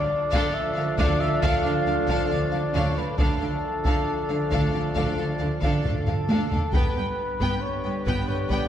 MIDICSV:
0, 0, Header, 1, 11, 480
1, 0, Start_track
1, 0, Tempo, 882353
1, 1736, Time_signature, 4, 2, 24, 8
1, 4722, End_track
2, 0, Start_track
2, 0, Title_t, "Violin section"
2, 0, Program_c, 0, 48
2, 171, Note_on_c, 0, 77, 70
2, 285, Note_off_c, 0, 77, 0
2, 410, Note_on_c, 0, 77, 55
2, 454, Note_off_c, 0, 77, 0
2, 534, Note_on_c, 0, 77, 67
2, 644, Note_off_c, 0, 77, 0
2, 651, Note_on_c, 0, 77, 57
2, 694, Note_off_c, 0, 77, 0
2, 772, Note_on_c, 0, 77, 72
2, 883, Note_off_c, 0, 77, 0
2, 889, Note_on_c, 0, 77, 52
2, 933, Note_off_c, 0, 77, 0
2, 1013, Note_on_c, 0, 77, 53
2, 1057, Note_off_c, 0, 77, 0
2, 1130, Note_on_c, 0, 77, 65
2, 1243, Note_off_c, 0, 77, 0
2, 1253, Note_on_c, 0, 77, 53
2, 1297, Note_off_c, 0, 77, 0
2, 1370, Note_on_c, 0, 77, 43
2, 1414, Note_off_c, 0, 77, 0
2, 1492, Note_on_c, 0, 77, 59
2, 1606, Note_off_c, 0, 77, 0
2, 1616, Note_on_c, 0, 77, 49
2, 1660, Note_off_c, 0, 77, 0
2, 1732, Note_on_c, 0, 77, 53
2, 1846, Note_off_c, 0, 77, 0
2, 1857, Note_on_c, 0, 77, 40
2, 1900, Note_off_c, 0, 77, 0
2, 2096, Note_on_c, 0, 77, 54
2, 2208, Note_off_c, 0, 77, 0
2, 2332, Note_on_c, 0, 77, 40
2, 2376, Note_off_c, 0, 77, 0
2, 2453, Note_on_c, 0, 77, 54
2, 2568, Note_off_c, 0, 77, 0
2, 2577, Note_on_c, 0, 77, 35
2, 2620, Note_off_c, 0, 77, 0
2, 2688, Note_on_c, 0, 77, 55
2, 2804, Note_off_c, 0, 77, 0
2, 2810, Note_on_c, 0, 77, 37
2, 2854, Note_off_c, 0, 77, 0
2, 2931, Note_on_c, 0, 77, 44
2, 2974, Note_off_c, 0, 77, 0
2, 3053, Note_on_c, 0, 77, 53
2, 3165, Note_off_c, 0, 77, 0
2, 3171, Note_on_c, 0, 77, 42
2, 3215, Note_off_c, 0, 77, 0
2, 3300, Note_on_c, 0, 77, 39
2, 3343, Note_off_c, 0, 77, 0
2, 3417, Note_on_c, 0, 77, 44
2, 3534, Note_off_c, 0, 77, 0
2, 3541, Note_on_c, 0, 77, 37
2, 3585, Note_off_c, 0, 77, 0
2, 3662, Note_on_c, 0, 79, 48
2, 3777, Note_off_c, 0, 79, 0
2, 3789, Note_on_c, 0, 79, 41
2, 3832, Note_off_c, 0, 79, 0
2, 4029, Note_on_c, 0, 79, 56
2, 4141, Note_off_c, 0, 79, 0
2, 4268, Note_on_c, 0, 79, 36
2, 4312, Note_off_c, 0, 79, 0
2, 4390, Note_on_c, 0, 79, 59
2, 4500, Note_off_c, 0, 79, 0
2, 4512, Note_on_c, 0, 79, 38
2, 4556, Note_off_c, 0, 79, 0
2, 4629, Note_on_c, 0, 79, 59
2, 4722, Note_off_c, 0, 79, 0
2, 4722, End_track
3, 0, Start_track
3, 0, Title_t, "Trumpet"
3, 0, Program_c, 1, 56
3, 0, Note_on_c, 1, 74, 85
3, 294, Note_on_c, 1, 76, 95
3, 302, Note_off_c, 1, 74, 0
3, 526, Note_off_c, 1, 76, 0
3, 529, Note_on_c, 1, 74, 81
3, 653, Note_on_c, 1, 76, 86
3, 661, Note_off_c, 1, 74, 0
3, 768, Note_on_c, 1, 77, 89
3, 777, Note_off_c, 1, 76, 0
3, 1246, Note_off_c, 1, 77, 0
3, 1250, Note_on_c, 1, 74, 70
3, 1494, Note_on_c, 1, 73, 73
3, 1502, Note_off_c, 1, 74, 0
3, 1620, Note_on_c, 1, 71, 61
3, 1628, Note_off_c, 1, 73, 0
3, 1730, Note_off_c, 1, 71, 0
3, 1733, Note_on_c, 1, 69, 78
3, 3006, Note_off_c, 1, 69, 0
3, 3182, Note_on_c, 1, 69, 60
3, 3662, Note_on_c, 1, 71, 74
3, 3670, Note_off_c, 1, 69, 0
3, 4143, Note_on_c, 1, 73, 68
3, 4151, Note_off_c, 1, 71, 0
3, 4379, Note_off_c, 1, 73, 0
3, 4382, Note_on_c, 1, 71, 57
3, 4504, Note_on_c, 1, 73, 63
3, 4512, Note_off_c, 1, 71, 0
3, 4626, Note_on_c, 1, 74, 84
3, 4634, Note_off_c, 1, 73, 0
3, 4722, Note_off_c, 1, 74, 0
3, 4722, End_track
4, 0, Start_track
4, 0, Title_t, "Violin section"
4, 0, Program_c, 2, 48
4, 191, Note_on_c, 2, 69, 83
4, 296, Note_off_c, 2, 69, 0
4, 428, Note_on_c, 2, 69, 53
4, 471, Note_off_c, 2, 69, 0
4, 548, Note_on_c, 2, 69, 62
4, 654, Note_off_c, 2, 69, 0
4, 668, Note_on_c, 2, 69, 46
4, 711, Note_off_c, 2, 69, 0
4, 784, Note_on_c, 2, 69, 72
4, 891, Note_off_c, 2, 69, 0
4, 900, Note_on_c, 2, 69, 47
4, 944, Note_off_c, 2, 69, 0
4, 1020, Note_on_c, 2, 69, 52
4, 1064, Note_off_c, 2, 69, 0
4, 1139, Note_on_c, 2, 69, 60
4, 1244, Note_off_c, 2, 69, 0
4, 1250, Note_on_c, 2, 69, 50
4, 1294, Note_off_c, 2, 69, 0
4, 1375, Note_on_c, 2, 69, 47
4, 1419, Note_off_c, 2, 69, 0
4, 1493, Note_on_c, 2, 69, 60
4, 1603, Note_off_c, 2, 69, 0
4, 1609, Note_on_c, 2, 69, 43
4, 1653, Note_off_c, 2, 69, 0
4, 1732, Note_on_c, 2, 69, 56
4, 1846, Note_off_c, 2, 69, 0
4, 1856, Note_on_c, 2, 69, 38
4, 1900, Note_off_c, 2, 69, 0
4, 2096, Note_on_c, 2, 69, 51
4, 2209, Note_off_c, 2, 69, 0
4, 2332, Note_on_c, 2, 69, 40
4, 2375, Note_off_c, 2, 69, 0
4, 2459, Note_on_c, 2, 69, 52
4, 2571, Note_off_c, 2, 69, 0
4, 2587, Note_on_c, 2, 69, 40
4, 2630, Note_off_c, 2, 69, 0
4, 2701, Note_on_c, 2, 69, 52
4, 2813, Note_off_c, 2, 69, 0
4, 2819, Note_on_c, 2, 69, 44
4, 2862, Note_off_c, 2, 69, 0
4, 2938, Note_on_c, 2, 69, 44
4, 2982, Note_off_c, 2, 69, 0
4, 3069, Note_on_c, 2, 69, 55
4, 3178, Note_off_c, 2, 69, 0
4, 3185, Note_on_c, 2, 69, 41
4, 3228, Note_off_c, 2, 69, 0
4, 3312, Note_on_c, 2, 69, 43
4, 3355, Note_off_c, 2, 69, 0
4, 3433, Note_on_c, 2, 69, 53
4, 3542, Note_off_c, 2, 69, 0
4, 3551, Note_on_c, 2, 69, 50
4, 3595, Note_off_c, 2, 69, 0
4, 3671, Note_on_c, 2, 71, 57
4, 3779, Note_off_c, 2, 71, 0
4, 3786, Note_on_c, 2, 71, 33
4, 3829, Note_off_c, 2, 71, 0
4, 4026, Note_on_c, 2, 71, 51
4, 4139, Note_off_c, 2, 71, 0
4, 4267, Note_on_c, 2, 71, 43
4, 4311, Note_off_c, 2, 71, 0
4, 4376, Note_on_c, 2, 71, 54
4, 4492, Note_off_c, 2, 71, 0
4, 4498, Note_on_c, 2, 71, 41
4, 4542, Note_off_c, 2, 71, 0
4, 4619, Note_on_c, 2, 71, 54
4, 4722, Note_off_c, 2, 71, 0
4, 4722, End_track
5, 0, Start_track
5, 0, Title_t, "French horn section"
5, 0, Program_c, 3, 60
5, 0, Note_on_c, 3, 62, 79
5, 0, Note_on_c, 3, 69, 88
5, 1647, Note_off_c, 3, 62, 0
5, 1647, Note_off_c, 3, 69, 0
5, 1739, Note_on_c, 3, 62, 65
5, 1739, Note_on_c, 3, 69, 62
5, 3472, Note_off_c, 3, 62, 0
5, 3472, Note_off_c, 3, 69, 0
5, 3665, Note_on_c, 3, 59, 63
5, 3669, Note_on_c, 3, 71, 62
5, 4722, Note_off_c, 3, 59, 0
5, 4722, Note_off_c, 3, 71, 0
5, 4722, End_track
6, 0, Start_track
6, 0, Title_t, "Woodwind section"
6, 0, Program_c, 4, 71
6, 0, Note_on_c, 4, 57, 77
6, 0, Note_on_c, 4, 62, 80
6, 0, Note_on_c, 4, 65, 81
6, 0, Note_on_c, 4, 74, 75
6, 1648, Note_off_c, 4, 57, 0
6, 1648, Note_off_c, 4, 62, 0
6, 1648, Note_off_c, 4, 65, 0
6, 1648, Note_off_c, 4, 74, 0
6, 1740, Note_on_c, 4, 62, 61
6, 1740, Note_on_c, 4, 74, 62
6, 1743, Note_on_c, 4, 57, 63
6, 1745, Note_on_c, 4, 65, 62
6, 3472, Note_off_c, 4, 62, 0
6, 3472, Note_off_c, 4, 74, 0
6, 3474, Note_off_c, 4, 57, 0
6, 3474, Note_off_c, 4, 65, 0
6, 3667, Note_on_c, 4, 59, 58
6, 3668, Note_on_c, 4, 71, 56
6, 3669, Note_on_c, 4, 62, 57
6, 3670, Note_on_c, 4, 67, 53
6, 4722, Note_off_c, 4, 59, 0
6, 4722, Note_off_c, 4, 62, 0
6, 4722, Note_off_c, 4, 67, 0
6, 4722, Note_off_c, 4, 71, 0
6, 4722, End_track
7, 0, Start_track
7, 0, Title_t, "Viola section"
7, 0, Program_c, 5, 48
7, 181, Note_on_c, 5, 62, 75
7, 291, Note_off_c, 5, 62, 0
7, 418, Note_on_c, 5, 62, 54
7, 461, Note_off_c, 5, 62, 0
7, 533, Note_on_c, 5, 62, 77
7, 646, Note_off_c, 5, 62, 0
7, 654, Note_on_c, 5, 62, 50
7, 698, Note_off_c, 5, 62, 0
7, 771, Note_on_c, 5, 62, 73
7, 884, Note_off_c, 5, 62, 0
7, 892, Note_on_c, 5, 62, 50
7, 935, Note_off_c, 5, 62, 0
7, 1014, Note_on_c, 5, 62, 52
7, 1057, Note_off_c, 5, 62, 0
7, 1132, Note_on_c, 5, 62, 57
7, 1245, Note_off_c, 5, 62, 0
7, 1260, Note_on_c, 5, 62, 50
7, 1303, Note_off_c, 5, 62, 0
7, 1381, Note_on_c, 5, 62, 45
7, 1425, Note_off_c, 5, 62, 0
7, 1499, Note_on_c, 5, 62, 53
7, 1609, Note_off_c, 5, 62, 0
7, 1623, Note_on_c, 5, 62, 45
7, 1667, Note_off_c, 5, 62, 0
7, 1736, Note_on_c, 5, 62, 61
7, 1848, Note_off_c, 5, 62, 0
7, 1860, Note_on_c, 5, 62, 39
7, 1904, Note_off_c, 5, 62, 0
7, 2102, Note_on_c, 5, 62, 52
7, 2211, Note_off_c, 5, 62, 0
7, 2334, Note_on_c, 5, 62, 43
7, 2378, Note_off_c, 5, 62, 0
7, 2453, Note_on_c, 5, 62, 55
7, 2566, Note_off_c, 5, 62, 0
7, 2573, Note_on_c, 5, 62, 41
7, 2616, Note_off_c, 5, 62, 0
7, 2697, Note_on_c, 5, 62, 58
7, 2811, Note_off_c, 5, 62, 0
7, 2822, Note_on_c, 5, 62, 41
7, 2865, Note_off_c, 5, 62, 0
7, 2942, Note_on_c, 5, 62, 37
7, 2986, Note_off_c, 5, 62, 0
7, 3063, Note_on_c, 5, 62, 56
7, 3175, Note_off_c, 5, 62, 0
7, 3182, Note_on_c, 5, 62, 43
7, 3225, Note_off_c, 5, 62, 0
7, 3308, Note_on_c, 5, 62, 40
7, 3352, Note_off_c, 5, 62, 0
7, 3427, Note_on_c, 5, 62, 50
7, 3536, Note_off_c, 5, 62, 0
7, 3543, Note_on_c, 5, 62, 44
7, 3586, Note_off_c, 5, 62, 0
7, 3664, Note_on_c, 5, 59, 59
7, 3778, Note_off_c, 5, 59, 0
7, 3788, Note_on_c, 5, 59, 38
7, 3831, Note_off_c, 5, 59, 0
7, 4027, Note_on_c, 5, 59, 50
7, 4140, Note_off_c, 5, 59, 0
7, 4267, Note_on_c, 5, 59, 39
7, 4311, Note_off_c, 5, 59, 0
7, 4386, Note_on_c, 5, 59, 56
7, 4498, Note_off_c, 5, 59, 0
7, 4506, Note_on_c, 5, 59, 40
7, 4550, Note_off_c, 5, 59, 0
7, 4623, Note_on_c, 5, 59, 56
7, 4722, Note_off_c, 5, 59, 0
7, 4722, End_track
8, 0, Start_track
8, 0, Title_t, "Trombone section"
8, 0, Program_c, 6, 61
8, 0, Note_on_c, 6, 50, 79
8, 0, Note_on_c, 6, 53, 80
8, 1643, Note_off_c, 6, 50, 0
8, 1643, Note_off_c, 6, 53, 0
8, 1735, Note_on_c, 6, 53, 65
8, 1737, Note_on_c, 6, 50, 59
8, 3470, Note_off_c, 6, 50, 0
8, 3470, Note_off_c, 6, 53, 0
8, 3667, Note_on_c, 6, 50, 60
8, 3667, Note_on_c, 6, 55, 60
8, 4722, Note_off_c, 6, 50, 0
8, 4722, Note_off_c, 6, 55, 0
8, 4722, End_track
9, 0, Start_track
9, 0, Title_t, "Cello section"
9, 0, Program_c, 7, 48
9, 183, Note_on_c, 7, 50, 81
9, 226, Note_off_c, 7, 50, 0
9, 420, Note_on_c, 7, 50, 55
9, 464, Note_off_c, 7, 50, 0
9, 538, Note_on_c, 7, 50, 77
9, 581, Note_off_c, 7, 50, 0
9, 656, Note_on_c, 7, 50, 52
9, 700, Note_off_c, 7, 50, 0
9, 773, Note_on_c, 7, 50, 67
9, 817, Note_off_c, 7, 50, 0
9, 896, Note_on_c, 7, 50, 54
9, 940, Note_off_c, 7, 50, 0
9, 1016, Note_on_c, 7, 50, 48
9, 1060, Note_off_c, 7, 50, 0
9, 1133, Note_on_c, 7, 50, 68
9, 1177, Note_off_c, 7, 50, 0
9, 1255, Note_on_c, 7, 50, 44
9, 1298, Note_off_c, 7, 50, 0
9, 1376, Note_on_c, 7, 50, 44
9, 1419, Note_off_c, 7, 50, 0
9, 1493, Note_on_c, 7, 50, 66
9, 1537, Note_off_c, 7, 50, 0
9, 1615, Note_on_c, 7, 50, 43
9, 1659, Note_off_c, 7, 50, 0
9, 1732, Note_on_c, 7, 50, 61
9, 1775, Note_off_c, 7, 50, 0
9, 1855, Note_on_c, 7, 50, 45
9, 1898, Note_off_c, 7, 50, 0
9, 2093, Note_on_c, 7, 50, 58
9, 2136, Note_off_c, 7, 50, 0
9, 2333, Note_on_c, 7, 50, 46
9, 2377, Note_off_c, 7, 50, 0
9, 2452, Note_on_c, 7, 50, 57
9, 2496, Note_off_c, 7, 50, 0
9, 2575, Note_on_c, 7, 50, 36
9, 2618, Note_off_c, 7, 50, 0
9, 2697, Note_on_c, 7, 50, 53
9, 2740, Note_off_c, 7, 50, 0
9, 2820, Note_on_c, 7, 50, 39
9, 2863, Note_off_c, 7, 50, 0
9, 2941, Note_on_c, 7, 50, 39
9, 2984, Note_off_c, 7, 50, 0
9, 3061, Note_on_c, 7, 50, 55
9, 3105, Note_off_c, 7, 50, 0
9, 3178, Note_on_c, 7, 50, 39
9, 3221, Note_off_c, 7, 50, 0
9, 3304, Note_on_c, 7, 50, 38
9, 3347, Note_off_c, 7, 50, 0
9, 3427, Note_on_c, 7, 50, 53
9, 3471, Note_off_c, 7, 50, 0
9, 3544, Note_on_c, 7, 50, 39
9, 3587, Note_off_c, 7, 50, 0
9, 3666, Note_on_c, 7, 43, 57
9, 3709, Note_off_c, 7, 43, 0
9, 3788, Note_on_c, 7, 43, 42
9, 3832, Note_off_c, 7, 43, 0
9, 4027, Note_on_c, 7, 43, 58
9, 4070, Note_off_c, 7, 43, 0
9, 4269, Note_on_c, 7, 43, 42
9, 4313, Note_off_c, 7, 43, 0
9, 4387, Note_on_c, 7, 43, 60
9, 4430, Note_off_c, 7, 43, 0
9, 4504, Note_on_c, 7, 43, 39
9, 4547, Note_off_c, 7, 43, 0
9, 4625, Note_on_c, 7, 43, 59
9, 4668, Note_off_c, 7, 43, 0
9, 4722, End_track
10, 0, Start_track
10, 0, Title_t, "Double bass section"
10, 0, Program_c, 8, 48
10, 537, Note_on_c, 8, 38, 72
10, 581, Note_off_c, 8, 38, 0
10, 776, Note_on_c, 8, 38, 75
10, 820, Note_off_c, 8, 38, 0
10, 1012, Note_on_c, 8, 38, 49
10, 1056, Note_off_c, 8, 38, 0
10, 1257, Note_on_c, 8, 38, 47
10, 1301, Note_off_c, 8, 38, 0
10, 1495, Note_on_c, 8, 38, 68
10, 1539, Note_off_c, 8, 38, 0
10, 1733, Note_on_c, 8, 38, 60
10, 1776, Note_off_c, 8, 38, 0
10, 2455, Note_on_c, 8, 38, 54
10, 2499, Note_off_c, 8, 38, 0
10, 2696, Note_on_c, 8, 38, 57
10, 2740, Note_off_c, 8, 38, 0
10, 2940, Note_on_c, 8, 38, 39
10, 2983, Note_off_c, 8, 38, 0
10, 3183, Note_on_c, 8, 38, 38
10, 3226, Note_off_c, 8, 38, 0
10, 3425, Note_on_c, 8, 38, 53
10, 3469, Note_off_c, 8, 38, 0
10, 3665, Note_on_c, 8, 31, 58
10, 3708, Note_off_c, 8, 31, 0
10, 4389, Note_on_c, 8, 31, 51
10, 4432, Note_off_c, 8, 31, 0
10, 4626, Note_on_c, 8, 31, 58
10, 4669, Note_off_c, 8, 31, 0
10, 4722, End_track
11, 0, Start_track
11, 0, Title_t, "Taiko and cinematic ensemble drums"
11, 178, Note_on_c, 9, 41, 68
11, 233, Note_off_c, 9, 41, 0
11, 533, Note_on_c, 9, 41, 68
11, 588, Note_off_c, 9, 41, 0
11, 775, Note_on_c, 9, 41, 70
11, 829, Note_off_c, 9, 41, 0
11, 1130, Note_on_c, 9, 41, 72
11, 1184, Note_off_c, 9, 41, 0
11, 1732, Note_on_c, 9, 41, 78
11, 1786, Note_off_c, 9, 41, 0
11, 2094, Note_on_c, 9, 41, 74
11, 2148, Note_off_c, 9, 41, 0
11, 2458, Note_on_c, 9, 41, 65
11, 2512, Note_off_c, 9, 41, 0
11, 2698, Note_on_c, 9, 41, 60
11, 2753, Note_off_c, 9, 41, 0
11, 3059, Note_on_c, 9, 41, 69
11, 3113, Note_off_c, 9, 41, 0
11, 3181, Note_on_c, 9, 45, 76
11, 3235, Note_off_c, 9, 45, 0
11, 3300, Note_on_c, 9, 45, 81
11, 3355, Note_off_c, 9, 45, 0
11, 3420, Note_on_c, 9, 48, 71
11, 3475, Note_off_c, 9, 48, 0
11, 3544, Note_on_c, 9, 43, 76
11, 3599, Note_off_c, 9, 43, 0
11, 3666, Note_on_c, 9, 41, 80
11, 3721, Note_off_c, 9, 41, 0
11, 4028, Note_on_c, 9, 41, 70
11, 4083, Note_off_c, 9, 41, 0
11, 4385, Note_on_c, 9, 41, 65
11, 4439, Note_off_c, 9, 41, 0
11, 4624, Note_on_c, 9, 41, 66
11, 4678, Note_off_c, 9, 41, 0
11, 4722, End_track
0, 0, End_of_file